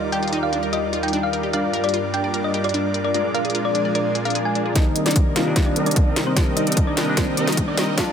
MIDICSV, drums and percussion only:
0, 0, Header, 1, 2, 480
1, 0, Start_track
1, 0, Tempo, 402685
1, 1829, Time_signature, 4, 2, 24, 8
1, 9684, End_track
2, 0, Start_track
2, 0, Title_t, "Drums"
2, 148, Note_on_c, 9, 42, 56
2, 267, Note_off_c, 9, 42, 0
2, 270, Note_on_c, 9, 42, 41
2, 329, Note_off_c, 9, 42, 0
2, 329, Note_on_c, 9, 42, 56
2, 389, Note_off_c, 9, 42, 0
2, 389, Note_on_c, 9, 42, 68
2, 508, Note_off_c, 9, 42, 0
2, 629, Note_on_c, 9, 42, 59
2, 748, Note_off_c, 9, 42, 0
2, 869, Note_on_c, 9, 42, 67
2, 988, Note_off_c, 9, 42, 0
2, 1109, Note_on_c, 9, 42, 57
2, 1228, Note_off_c, 9, 42, 0
2, 1230, Note_on_c, 9, 42, 42
2, 1289, Note_off_c, 9, 42, 0
2, 1289, Note_on_c, 9, 42, 54
2, 1348, Note_off_c, 9, 42, 0
2, 1348, Note_on_c, 9, 42, 69
2, 1467, Note_off_c, 9, 42, 0
2, 1588, Note_on_c, 9, 42, 56
2, 1707, Note_off_c, 9, 42, 0
2, 1828, Note_on_c, 9, 42, 70
2, 1948, Note_off_c, 9, 42, 0
2, 2068, Note_on_c, 9, 42, 58
2, 2187, Note_off_c, 9, 42, 0
2, 2190, Note_on_c, 9, 42, 43
2, 2249, Note_off_c, 9, 42, 0
2, 2249, Note_on_c, 9, 42, 58
2, 2309, Note_off_c, 9, 42, 0
2, 2309, Note_on_c, 9, 42, 72
2, 2428, Note_off_c, 9, 42, 0
2, 2548, Note_on_c, 9, 42, 60
2, 2667, Note_off_c, 9, 42, 0
2, 2788, Note_on_c, 9, 42, 69
2, 2907, Note_off_c, 9, 42, 0
2, 3028, Note_on_c, 9, 42, 58
2, 3147, Note_off_c, 9, 42, 0
2, 3149, Note_on_c, 9, 42, 43
2, 3209, Note_off_c, 9, 42, 0
2, 3209, Note_on_c, 9, 42, 57
2, 3268, Note_off_c, 9, 42, 0
2, 3268, Note_on_c, 9, 42, 71
2, 3387, Note_off_c, 9, 42, 0
2, 3508, Note_on_c, 9, 42, 57
2, 3627, Note_off_c, 9, 42, 0
2, 3748, Note_on_c, 9, 42, 70
2, 3867, Note_off_c, 9, 42, 0
2, 3988, Note_on_c, 9, 42, 60
2, 4107, Note_off_c, 9, 42, 0
2, 4109, Note_on_c, 9, 42, 44
2, 4169, Note_off_c, 9, 42, 0
2, 4169, Note_on_c, 9, 42, 59
2, 4229, Note_off_c, 9, 42, 0
2, 4229, Note_on_c, 9, 42, 75
2, 4348, Note_off_c, 9, 42, 0
2, 4469, Note_on_c, 9, 42, 63
2, 4588, Note_off_c, 9, 42, 0
2, 4709, Note_on_c, 9, 42, 73
2, 4828, Note_off_c, 9, 42, 0
2, 4948, Note_on_c, 9, 42, 62
2, 5068, Note_off_c, 9, 42, 0
2, 5070, Note_on_c, 9, 42, 45
2, 5129, Note_off_c, 9, 42, 0
2, 5129, Note_on_c, 9, 42, 59
2, 5188, Note_off_c, 9, 42, 0
2, 5188, Note_on_c, 9, 42, 72
2, 5307, Note_off_c, 9, 42, 0
2, 5428, Note_on_c, 9, 42, 58
2, 5547, Note_off_c, 9, 42, 0
2, 5668, Note_on_c, 9, 36, 86
2, 5668, Note_on_c, 9, 38, 45
2, 5668, Note_on_c, 9, 42, 78
2, 5787, Note_off_c, 9, 36, 0
2, 5787, Note_off_c, 9, 38, 0
2, 5787, Note_off_c, 9, 42, 0
2, 5907, Note_on_c, 9, 42, 64
2, 6027, Note_off_c, 9, 42, 0
2, 6029, Note_on_c, 9, 38, 41
2, 6029, Note_on_c, 9, 42, 49
2, 6088, Note_off_c, 9, 42, 0
2, 6088, Note_on_c, 9, 42, 61
2, 6147, Note_off_c, 9, 42, 0
2, 6147, Note_on_c, 9, 42, 78
2, 6148, Note_off_c, 9, 38, 0
2, 6148, Note_on_c, 9, 36, 88
2, 6267, Note_off_c, 9, 36, 0
2, 6267, Note_off_c, 9, 42, 0
2, 6388, Note_on_c, 9, 38, 48
2, 6388, Note_on_c, 9, 42, 66
2, 6507, Note_off_c, 9, 38, 0
2, 6507, Note_off_c, 9, 42, 0
2, 6627, Note_on_c, 9, 38, 50
2, 6627, Note_on_c, 9, 42, 78
2, 6628, Note_on_c, 9, 36, 92
2, 6746, Note_off_c, 9, 38, 0
2, 6746, Note_off_c, 9, 42, 0
2, 6747, Note_off_c, 9, 36, 0
2, 6867, Note_on_c, 9, 42, 64
2, 6986, Note_off_c, 9, 42, 0
2, 6989, Note_on_c, 9, 42, 48
2, 7048, Note_off_c, 9, 42, 0
2, 7048, Note_on_c, 9, 42, 62
2, 7107, Note_off_c, 9, 42, 0
2, 7107, Note_on_c, 9, 42, 78
2, 7108, Note_on_c, 9, 36, 90
2, 7226, Note_off_c, 9, 42, 0
2, 7227, Note_off_c, 9, 36, 0
2, 7347, Note_on_c, 9, 38, 56
2, 7347, Note_on_c, 9, 42, 61
2, 7466, Note_off_c, 9, 38, 0
2, 7466, Note_off_c, 9, 42, 0
2, 7587, Note_on_c, 9, 38, 55
2, 7587, Note_on_c, 9, 42, 77
2, 7588, Note_on_c, 9, 36, 92
2, 7707, Note_off_c, 9, 36, 0
2, 7707, Note_off_c, 9, 38, 0
2, 7707, Note_off_c, 9, 42, 0
2, 7828, Note_on_c, 9, 42, 65
2, 7947, Note_off_c, 9, 42, 0
2, 7950, Note_on_c, 9, 42, 49
2, 8009, Note_off_c, 9, 42, 0
2, 8009, Note_on_c, 9, 42, 66
2, 8068, Note_on_c, 9, 36, 90
2, 8069, Note_off_c, 9, 42, 0
2, 8069, Note_on_c, 9, 42, 81
2, 8187, Note_off_c, 9, 36, 0
2, 8188, Note_off_c, 9, 42, 0
2, 8309, Note_on_c, 9, 38, 61
2, 8309, Note_on_c, 9, 42, 67
2, 8428, Note_off_c, 9, 38, 0
2, 8428, Note_off_c, 9, 42, 0
2, 8548, Note_on_c, 9, 36, 96
2, 8548, Note_on_c, 9, 38, 62
2, 8548, Note_on_c, 9, 42, 81
2, 8667, Note_off_c, 9, 36, 0
2, 8667, Note_off_c, 9, 38, 0
2, 8667, Note_off_c, 9, 42, 0
2, 8788, Note_on_c, 9, 42, 67
2, 8908, Note_off_c, 9, 42, 0
2, 8910, Note_on_c, 9, 38, 59
2, 8910, Note_on_c, 9, 42, 48
2, 8968, Note_off_c, 9, 42, 0
2, 8968, Note_on_c, 9, 42, 65
2, 9027, Note_on_c, 9, 36, 93
2, 9028, Note_off_c, 9, 42, 0
2, 9028, Note_on_c, 9, 42, 83
2, 9029, Note_off_c, 9, 38, 0
2, 9147, Note_off_c, 9, 36, 0
2, 9147, Note_off_c, 9, 42, 0
2, 9268, Note_on_c, 9, 38, 71
2, 9268, Note_on_c, 9, 42, 63
2, 9387, Note_off_c, 9, 38, 0
2, 9387, Note_off_c, 9, 42, 0
2, 9507, Note_on_c, 9, 38, 71
2, 9507, Note_on_c, 9, 42, 77
2, 9508, Note_on_c, 9, 36, 95
2, 9626, Note_off_c, 9, 38, 0
2, 9626, Note_off_c, 9, 42, 0
2, 9627, Note_off_c, 9, 36, 0
2, 9684, End_track
0, 0, End_of_file